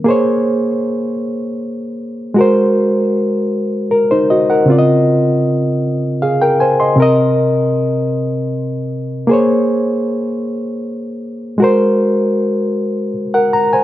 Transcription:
\new Staff \with { instrumentName = "Reed electric piano" } { \time 6/8 \key bes \minor \tempo 4. = 52 << { r2. | r2 bes'16 <ees' c''>16 <ges' ees''>16 <bes' ges''>16~ | <bes' ges''>16 r4. r16 <aes' f''>16 <bes' g''>16 <c'' aes''>16 <ees'' c'''>16~ | <ees'' c'''>16 r2 r8. |
r2. | r2 r16 <bes' ges''>16 bes''16 <c'' aes''>16 | } \\ { <bes aes' c'' des''>2. | <aes ges' bes' c''>2. | <des c' f' d'' ees''>2. | <c c' bes' ees''>2. |
<bes aes' c'' des''>2. | <aes ges' bes' c''>2. | } >> }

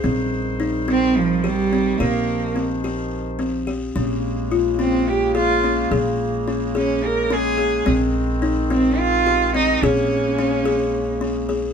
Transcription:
<<
  \new Staff \with { instrumentName = "Kalimba" } { \time 7/8 \key bes \dorian \tempo 4 = 107 c'4 ees'8 c'4 g'8 c'8 | g'4 c'8 g'4 c'8 g'8 | des'4 f'8 des'4 aes'8 des'8 | aes'4 des'8 aes'4 des'8 aes'8 |
c'4 ees'8 c'4 g'8 c'8 | aes'4 des'8 aes'4 des'8 aes'8 | }
  \new Staff \with { instrumentName = "Cello" } { \time 7/8 \key bes \dorian r4. c'8 f8 g4 | bes4 r2 r8 | r4. c'8 g'8 f'4 | r4. des'8 bes'8 aes'4 |
r4. c'8 f'4 ees'8 | des'2~ des'8 r4 | }
  \new Staff \with { instrumentName = "Woodwind section" } { \clef bass \time 7/8 \key bes \dorian << { <ees c''>2.~ <ees c''>8~ | <ees c''>2.~ <ees c''>8 | <des bes>2.~ <des bes>8~ | <des bes>2.~ <des bes>8 |
<ees c'>2.~ <ees c'>8 | <des bes>2.~ <des bes>8 | } \\ { g2.~ g8 | f2.~ f8 | aes2.~ aes8 | aes2.~ aes8~ |
aes2.~ aes8 | aes2.~ aes8 | } >> }
  \new Staff \with { instrumentName = "Upright bass" } { \clef bass \time 7/8 \key bes \dorian bes,,2.~ bes,,8 | bes,,2.~ bes,,8 | bes,,2.~ bes,,8 | bes,,2.~ bes,,8 |
bes,,2.~ bes,,8 | bes,,2.~ bes,,8 | }
>>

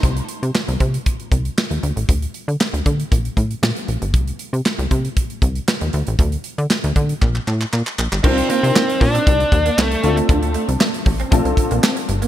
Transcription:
<<
  \new Staff \with { instrumentName = "Grand piano" } { \time 4/4 \key c \dorian \tempo 4 = 117 r1 | r1 | r1 | r1 |
<ees d' f' bes'>2.~ <ees d' f' bes'>8 <c' d' f' a'>8~ | <c' d' f' a'>2 <c' d' f' a'>2 | }
  \new Staff \with { instrumentName = "Lead electric guitar" } { \time 4/4 \key c \dorian r1 | r1 | r1 | r1 |
c'8 c'4 d'4. a8. r16 | r1 | }
  \new Staff \with { instrumentName = "Clean electric guitar" } { \time 4/4 \key c \dorian r1 | r1 | r1 | r1 |
c'16 r16 bes16 r16 bes16 r8 c'16 g16 r8 bes16 c'16 r8 a16 | d'16 r16 a16 r16 a16 r8 c'16 a16 r8 bes16 c'16 r8 bes16 | }
  \new Staff \with { instrumentName = "Analog synth bass" } { \clef bass \time 4/4 \key c \dorian c,8 r16 c16 r16 c,16 c8 r8 c,8 r16 ees,16 d,16 a,,16 | d,8 r16 d16 r16 d,16 d8 bes,,8 a,8 bes,16 r16 bes,,16 g,,16 | c,8 r16 c16 r16 c,16 c8 r8 c,8 r16 ees,16 d,16 a,,16 | d,8 r16 d16 r16 d,16 d8 bes,,8 a,8 bes,16 r16 bes,,16 g,,16 |
c,8 r16 c16 r8 bes,8 c,8 ees,8 c,8 d,8 | d,8. c,16 r8 a,,8 bes,,16 c,16 r16 bes,,16 r8 g,,8 | }
  \new DrumStaff \with { instrumentName = "Drums" } \drummode { \time 4/4 <hh bd>16 hh16 hh16 hh16 <hc sn>16 hh16 <hh bd>16 hh16 <hh bd>16 hh16 <hh bd>16 hh16 <hc sn>16 hh16 hh16 hh16 | <hh bd>16 hh16 hh16 hh16 <hc sn>16 hh16 <hh bd>16 hh16 <hh bd>16 hh16 <hh bd>16 hh16 <hc sn>16 hh16 hh16 hh16 | <hh bd>16 hh16 hh16 hh16 <hc sn>16 hh16 <hh bd>16 hh16 <hh bd>16 hh16 <hh bd>16 hh16 <hc sn>16 hh16 hh16 hh16 | <hh bd>16 hh16 hh16 hh16 <hc sn>16 hh16 <hh bd>16 hh16 <hc bd>16 hc16 hc16 hc16 hc16 hc16 hc16 hc16 |
<cymc bd>16 hh16 hh16 hh16 <hc sn>16 hh16 <hho bd>16 hh16 <hh bd>16 hh16 <hh bd>16 hh16 <hc sn>16 hh16 hh16 hh16 | <hh bd>16 hh16 hh16 hh16 <hc sn>16 hh16 <hho bd>16 hh16 <hh bd>16 hh16 <hh bd>16 hh16 <hc sn>16 hh16 hh16 hh16 | }
>>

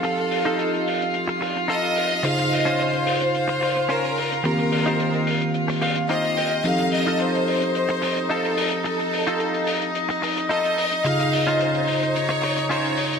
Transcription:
<<
  \new Staff \with { instrumentName = "Violin section" } { \time 4/4 \key f \mixolydian \tempo 4 = 109 a'4. r4. ees''4 | f''8 ees''8 c''4 c''4 bes'4 | bes'4. r4. ees''4 | f''8 ees''8 c''4 c''4 a'4 |
a'4. r4. ees''4 | f''8 ees''8 c''4 des''4 des''4 | }
  \new Staff \with { instrumentName = "String section" } { \time 4/4 \key f \mixolydian <f' f''>1~ | <f' f''>1~ | <f' f''>1 | <ees' ees''>1~ |
<ees' ees''>1~ | <ees' ees''>1 | }
  \new Staff \with { instrumentName = "Clean electric guitar" } { \time 4/4 \key f \mixolydian << { r1 | r1 | r2 r8 f''8 ees''16 f''16 g''8 | r1 |
r1 | r1 | } \\ { r8. <ees' f' a'>8. r4. <ees' f' a'>8 r8 | r8. <des' f' c''>8. r4. <des' f' c''>8 r8 | r8. <ees' f' g' c''>8. r4. <ees' f' g' c''>8 r8 | r8. <ees' f' a'>8. r4. <ees' f' a'>8 r8 |
r8. <ees' f' a'>8. r4. <ees' f' a'>8 r8 | r8. <des' f' c''>8. r4. <des' f' c''>8 r8 | } >> }
  \new Staff \with { instrumentName = "Tine electric piano" } { \time 4/4 \key f \mixolydian <f c' ees' g' a'>1 | <des ees' f' aes' c''>1 | <ees bes c' f' g'>1 | <f c' ees' g' a'>1~ |
<f c' ees' g' a'>1 | <des ees' f' aes'>1 | }
  \new DrumStaff \with { instrumentName = "Drums" } \drummode { \time 4/4 hh16 hh16 hho16 hh16 hh16 hh16 hho16 hh16 hh16 hh16 hho16 hh16 hh16 hh16 hho16 hh16 | hh16 hh16 hho16 hh16 hh16 hh16 hho16 hh16 hh16 hh16 hho16 hh16 hh16 hh16 hho16 hh16 | hh16 hh16 hho16 hh16 hh16 hh16 hho16 hh16 hh16 hho16 hho16 hh16 hh16 hh16 hho16 hh16 | hh16 hh16 hho16 hh16 hh16 hh16 hho16 hh16 hh16 hh16 hho16 hh16 hh16 hh16 hho16 hh16 |
hh16 hh16 hho16 hh16 hh16 hh16 hho16 hh16 hh16 hh16 hho16 hh16 hh16 hh16 hho16 hh16 | hh16 hh16 hho16 hh16 hh16 hh16 hho16 hh16 hh16 hh16 hho16 hh16 hh16 hh16 hho16 hh16 | }
>>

